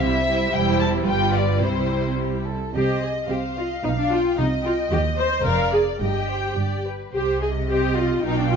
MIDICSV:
0, 0, Header, 1, 6, 480
1, 0, Start_track
1, 0, Key_signature, -3, "minor"
1, 0, Tempo, 540541
1, 472, Time_signature, 2, 2, 24, 8
1, 1438, Tempo, 561272
1, 2878, Tempo, 539084
1, 4798, Tempo, 554017
1, 7487, End_track
2, 0, Start_track
2, 0, Title_t, "Violin section"
2, 0, Program_c, 0, 48
2, 2, Note_on_c, 0, 76, 83
2, 473, Note_off_c, 0, 76, 0
2, 477, Note_on_c, 0, 79, 79
2, 712, Note_off_c, 0, 79, 0
2, 713, Note_on_c, 0, 81, 72
2, 784, Note_off_c, 0, 81, 0
2, 955, Note_on_c, 0, 79, 72
2, 1190, Note_off_c, 0, 79, 0
2, 1198, Note_on_c, 0, 74, 62
2, 1439, Note_on_c, 0, 72, 54
2, 1442, Note_off_c, 0, 74, 0
2, 1923, Note_off_c, 0, 72, 0
2, 2404, Note_on_c, 0, 72, 37
2, 2625, Note_off_c, 0, 72, 0
2, 2641, Note_on_c, 0, 75, 33
2, 2876, Note_on_c, 0, 72, 38
2, 2877, Note_off_c, 0, 75, 0
2, 3121, Note_off_c, 0, 72, 0
2, 3122, Note_on_c, 0, 75, 35
2, 3364, Note_off_c, 0, 75, 0
2, 3364, Note_on_c, 0, 77, 40
2, 3586, Note_off_c, 0, 77, 0
2, 3606, Note_on_c, 0, 79, 37
2, 3839, Note_on_c, 0, 75, 40
2, 3843, Note_off_c, 0, 79, 0
2, 4063, Note_off_c, 0, 75, 0
2, 4078, Note_on_c, 0, 79, 42
2, 4319, Note_off_c, 0, 79, 0
2, 4325, Note_on_c, 0, 75, 46
2, 4545, Note_off_c, 0, 75, 0
2, 4558, Note_on_c, 0, 72, 42
2, 4798, Note_off_c, 0, 72, 0
2, 4800, Note_on_c, 0, 77, 53
2, 5019, Note_off_c, 0, 77, 0
2, 5035, Note_on_c, 0, 74, 46
2, 5276, Note_off_c, 0, 74, 0
2, 5280, Note_on_c, 0, 75, 42
2, 5505, Note_off_c, 0, 75, 0
2, 5514, Note_on_c, 0, 72, 34
2, 5760, Note_off_c, 0, 72, 0
2, 5762, Note_on_c, 0, 74, 37
2, 5991, Note_off_c, 0, 74, 0
2, 6017, Note_on_c, 0, 71, 33
2, 6257, Note_off_c, 0, 71, 0
2, 6259, Note_on_c, 0, 72, 43
2, 6480, Note_off_c, 0, 72, 0
2, 6502, Note_on_c, 0, 75, 37
2, 6736, Note_off_c, 0, 75, 0
2, 6739, Note_on_c, 0, 72, 44
2, 6973, Note_off_c, 0, 72, 0
2, 6976, Note_on_c, 0, 75, 40
2, 7208, Note_off_c, 0, 75, 0
2, 7217, Note_on_c, 0, 77, 42
2, 7429, Note_off_c, 0, 77, 0
2, 7454, Note_on_c, 0, 79, 37
2, 7487, Note_off_c, 0, 79, 0
2, 7487, End_track
3, 0, Start_track
3, 0, Title_t, "Violin section"
3, 0, Program_c, 1, 48
3, 0, Note_on_c, 1, 67, 47
3, 0, Note_on_c, 1, 72, 48
3, 214, Note_off_c, 1, 72, 0
3, 215, Note_off_c, 1, 67, 0
3, 224, Note_on_c, 1, 72, 50
3, 226, Note_on_c, 1, 67, 51
3, 458, Note_off_c, 1, 67, 0
3, 458, Note_off_c, 1, 72, 0
3, 468, Note_on_c, 1, 72, 58
3, 469, Note_on_c, 1, 67, 62
3, 914, Note_off_c, 1, 72, 0
3, 915, Note_off_c, 1, 67, 0
3, 946, Note_on_c, 1, 67, 53
3, 946, Note_on_c, 1, 71, 51
3, 1424, Note_off_c, 1, 67, 0
3, 1433, Note_on_c, 1, 72, 43
3, 1435, Note_on_c, 1, 67, 43
3, 1437, Note_off_c, 1, 71, 0
3, 1864, Note_off_c, 1, 67, 0
3, 1872, Note_off_c, 1, 72, 0
3, 1924, Note_on_c, 1, 67, 38
3, 2150, Note_off_c, 1, 67, 0
3, 2158, Note_on_c, 1, 69, 41
3, 2395, Note_on_c, 1, 75, 48
3, 2402, Note_off_c, 1, 69, 0
3, 2840, Note_off_c, 1, 75, 0
3, 2872, Note_on_c, 1, 77, 45
3, 3838, Note_off_c, 1, 77, 0
3, 3838, Note_on_c, 1, 75, 58
3, 4796, Note_off_c, 1, 75, 0
3, 4800, Note_on_c, 1, 74, 56
3, 5272, Note_on_c, 1, 79, 61
3, 5276, Note_off_c, 1, 74, 0
3, 5992, Note_off_c, 1, 79, 0
3, 6730, Note_on_c, 1, 75, 49
3, 7171, Note_off_c, 1, 75, 0
3, 7209, Note_on_c, 1, 79, 69
3, 7487, Note_off_c, 1, 79, 0
3, 7487, End_track
4, 0, Start_track
4, 0, Title_t, "Viola section"
4, 0, Program_c, 2, 48
4, 0, Note_on_c, 2, 55, 50
4, 0, Note_on_c, 2, 64, 48
4, 220, Note_off_c, 2, 55, 0
4, 221, Note_off_c, 2, 64, 0
4, 231, Note_on_c, 2, 55, 45
4, 232, Note_on_c, 2, 64, 48
4, 458, Note_off_c, 2, 55, 0
4, 459, Note_off_c, 2, 64, 0
4, 469, Note_on_c, 2, 55, 61
4, 469, Note_on_c, 2, 64, 61
4, 915, Note_off_c, 2, 55, 0
4, 915, Note_off_c, 2, 64, 0
4, 945, Note_on_c, 2, 55, 56
4, 945, Note_on_c, 2, 65, 54
4, 1419, Note_off_c, 2, 55, 0
4, 1430, Note_on_c, 2, 55, 43
4, 1431, Note_on_c, 2, 64, 41
4, 1436, Note_off_c, 2, 65, 0
4, 2211, Note_off_c, 2, 55, 0
4, 2228, Note_off_c, 2, 64, 0
4, 2404, Note_on_c, 2, 67, 61
4, 2625, Note_off_c, 2, 67, 0
4, 2635, Note_on_c, 2, 68, 47
4, 2703, Note_off_c, 2, 68, 0
4, 2872, Note_on_c, 2, 67, 56
4, 2943, Note_off_c, 2, 67, 0
4, 3117, Note_on_c, 2, 65, 43
4, 3188, Note_off_c, 2, 65, 0
4, 3352, Note_on_c, 2, 63, 57
4, 3403, Note_off_c, 2, 63, 0
4, 3482, Note_on_c, 2, 62, 51
4, 3596, Note_on_c, 2, 65, 55
4, 3600, Note_off_c, 2, 62, 0
4, 3836, Note_on_c, 2, 63, 53
4, 3838, Note_off_c, 2, 65, 0
4, 3907, Note_off_c, 2, 63, 0
4, 4079, Note_on_c, 2, 65, 59
4, 4150, Note_off_c, 2, 65, 0
4, 4315, Note_on_c, 2, 67, 73
4, 4386, Note_off_c, 2, 67, 0
4, 4556, Note_on_c, 2, 72, 77
4, 4792, Note_off_c, 2, 72, 0
4, 4792, Note_on_c, 2, 70, 80
4, 5027, Note_off_c, 2, 70, 0
4, 5032, Note_on_c, 2, 68, 60
4, 5101, Note_off_c, 2, 68, 0
4, 5279, Note_on_c, 2, 67, 61
4, 5995, Note_off_c, 2, 67, 0
4, 6251, Note_on_c, 2, 67, 67
4, 6475, Note_off_c, 2, 67, 0
4, 6490, Note_on_c, 2, 68, 56
4, 6559, Note_off_c, 2, 68, 0
4, 6734, Note_on_c, 2, 67, 63
4, 6966, Note_off_c, 2, 67, 0
4, 6971, Note_on_c, 2, 65, 54
4, 7204, Note_on_c, 2, 63, 68
4, 7205, Note_off_c, 2, 65, 0
4, 7319, Note_off_c, 2, 63, 0
4, 7326, Note_on_c, 2, 62, 59
4, 7436, Note_on_c, 2, 65, 54
4, 7441, Note_off_c, 2, 62, 0
4, 7487, Note_off_c, 2, 65, 0
4, 7487, End_track
5, 0, Start_track
5, 0, Title_t, "Cello section"
5, 0, Program_c, 3, 48
5, 0, Note_on_c, 3, 48, 58
5, 393, Note_off_c, 3, 48, 0
5, 468, Note_on_c, 3, 40, 65
5, 914, Note_off_c, 3, 40, 0
5, 943, Note_on_c, 3, 43, 55
5, 1435, Note_off_c, 3, 43, 0
5, 1435, Note_on_c, 3, 48, 44
5, 2229, Note_off_c, 3, 48, 0
5, 2404, Note_on_c, 3, 48, 52
5, 2801, Note_off_c, 3, 48, 0
5, 2874, Note_on_c, 3, 48, 43
5, 3283, Note_off_c, 3, 48, 0
5, 3357, Note_on_c, 3, 47, 55
5, 3760, Note_off_c, 3, 47, 0
5, 3842, Note_on_c, 3, 48, 55
5, 4243, Note_off_c, 3, 48, 0
5, 4318, Note_on_c, 3, 39, 68
5, 4719, Note_off_c, 3, 39, 0
5, 4799, Note_on_c, 3, 41, 56
5, 5198, Note_off_c, 3, 41, 0
5, 5278, Note_on_c, 3, 43, 58
5, 5685, Note_off_c, 3, 43, 0
5, 5763, Note_on_c, 3, 43, 42
5, 6173, Note_off_c, 3, 43, 0
5, 6252, Note_on_c, 3, 48, 47
5, 7170, Note_off_c, 3, 48, 0
5, 7209, Note_on_c, 3, 47, 52
5, 7487, Note_off_c, 3, 47, 0
5, 7487, End_track
6, 0, Start_track
6, 0, Title_t, "Double bass section"
6, 0, Program_c, 4, 48
6, 0, Note_on_c, 4, 36, 54
6, 394, Note_off_c, 4, 36, 0
6, 474, Note_on_c, 4, 28, 60
6, 917, Note_off_c, 4, 28, 0
6, 951, Note_on_c, 4, 31, 53
6, 1436, Note_on_c, 4, 36, 44
6, 1439, Note_off_c, 4, 31, 0
6, 2230, Note_off_c, 4, 36, 0
6, 2405, Note_on_c, 4, 36, 47
6, 2801, Note_off_c, 4, 36, 0
6, 2875, Note_on_c, 4, 36, 43
6, 3283, Note_off_c, 4, 36, 0
6, 3364, Note_on_c, 4, 35, 51
6, 3764, Note_off_c, 4, 35, 0
6, 3840, Note_on_c, 4, 36, 53
6, 4241, Note_off_c, 4, 36, 0
6, 4323, Note_on_c, 4, 39, 60
6, 4721, Note_off_c, 4, 39, 0
6, 4799, Note_on_c, 4, 29, 61
6, 5198, Note_off_c, 4, 29, 0
6, 5274, Note_on_c, 4, 31, 60
6, 5683, Note_off_c, 4, 31, 0
6, 5764, Note_on_c, 4, 31, 41
6, 6174, Note_off_c, 4, 31, 0
6, 6251, Note_on_c, 4, 36, 48
6, 7169, Note_off_c, 4, 36, 0
6, 7208, Note_on_c, 4, 35, 52
6, 7487, Note_off_c, 4, 35, 0
6, 7487, End_track
0, 0, End_of_file